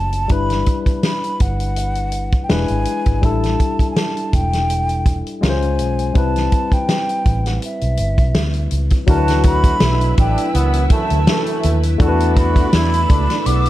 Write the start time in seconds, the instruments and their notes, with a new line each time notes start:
Already playing: fingered electric bass F#1, tine electric piano A3 D4 F#4 C#5, flute A5
0.13 closed hi-hat
0.28 fingered electric bass G1, tine electric piano G3 D4 E4, kick, closed hi-hat
0.32 tine electric piano B4, flute B5
0.50 snare, closed hi-hat
0.66 kick, closed hi-hat
0.86 kick, closed hi-hat
1.03 flute B5, snare, closed hi-hat
1.24 closed hi-hat
1.40 fingered electric bass G1, flute F#5, kick, closed hi-hat
1.60 closed hi-hat
1.76 closed hi-hat
1.95 closed hi-hat
2.12 closed hi-hat
2.32 kick, closed hi-hat
2.44 flute G5
2.49 fingered electric bass E1, tine electric piano G#3 D4 E4 B4, flute G#5, snare, closed hi-hat
2.68 fingered electric bass G#1, closed hi-hat
2.85 closed hi-hat
3.06 fingered electric bass G#1, kick, closed hi-hat
3.21 fingered electric bass A1, tine electric piano G3 D4 E4, flute A5, kick, closed hi-hat
3.25 tine electric piano A4
3.43 snare, closed hi-hat
3.60 kick, closed hi-hat
3.79 kick, closed hi-hat
3.91 flute G#5
3.96 flute A5, snare, closed hi-hat
4.17 closed hi-hat
4.33 fingered electric bass E1, flute G5, kick, closed hi-hat
4.53 snare, closed hi-hat
4.70 closed hi-hat
4.89 closed hi-hat
5.06 kick, closed hi-hat
5.27 closed hi-hat
5.41 fingered electric bass C#2, tine electric piano G#3 C#4 F4 A#4, flute G#5, snare, closed hi-hat
5.49 tine electric piano C5
5.62 closed hi-hat
5.79 fingered electric bass B1, closed hi-hat
5.99 closed hi-hat
6.14 fingered electric bass C2, tine electric piano G3 C4 E4, flute A5, kick, closed hi-hat
6.18 tine electric piano B4
6.36 snare, closed hi-hat
6.52 kick, closed hi-hat
6.72 flute G5, kick, closed hi-hat
6.89 snare, closed hi-hat
7.09 closed hi-hat
7.25 fingered electric bass A1, kick, closed hi-hat
7.46 flute F#5, snare, closed hi-hat
7.62 flute E5, closed hi-hat
7.81 fingered electric bass B1, closed hi-hat
7.97 fingered electric bass G1, closed hi-hat
8.18 fingered electric bass B1, kick, closed hi-hat
8.35 fingered electric bass D2, snare, closed hi-hat
8.54 closed hi-hat
8.71 fingered electric bass C#2, closed hi-hat
8.90 kick, closed hi-hat
9.07 fingered electric bass D2, trombone section B2 A3 F#4, tine electric piano F#3 D4 E4 A#4, string machine E4 B4 E5, flute A5, kick, closed hi-hat
9.17 tine electric piano B4
9.28 snare, closed hi-hat
9.43 flute B5, kick, closed hi-hat
9.64 kick, closed hi-hat
9.80 fingered electric bass B1, trombone section B2 A3 E4, snare, closed hi-hat
10.01 closed hi-hat
10.18 fingered electric bass A1, trombone section B2 A3 D4, flute G5, kick, closed hi-hat
10.38 closed hi-hat
10.54 fingered electric bass C#2, trombone section F#2 E3 B3, flute F#5, closed hi-hat
10.74 closed hi-hat
10.90 trombone section F#2 E3 A3, flute A5, kick, closed hi-hat
11.10 fingered electric bass D2, closed hi-hat
11.27 trombone section F#2 E3 A3, snare, closed hi-hat
11.46 closed hi-hat
11.63 fingered electric bass D#2, closed hi-hat
11.83 closed hi-hat
11.98 fingered electric bass E2, trombone section D3 B3 F#4, tine electric piano A3 D4 E4 A4, string machine D4 A4 E5, flute A5, kick, closed hi-hat
12.09 tine electric piano B4
12.20 closed hi-hat
12.36 flute B5, kick, closed hi-hat
12.56 kick, closed hi-hat
12.73 fingered electric bass E2, trombone section B2 A3 E4, snare, closed hi-hat
12.94 closed hi-hat
13.10 fingered electric bass C#2, trombone section B2 A3 D4, kick, closed hi-hat
13.30 snare, closed hi-hat
13.46 fingered electric bass B1, trombone section E2 D3 B3, flute D6, closed hi-hat
13.65 closed hi-hat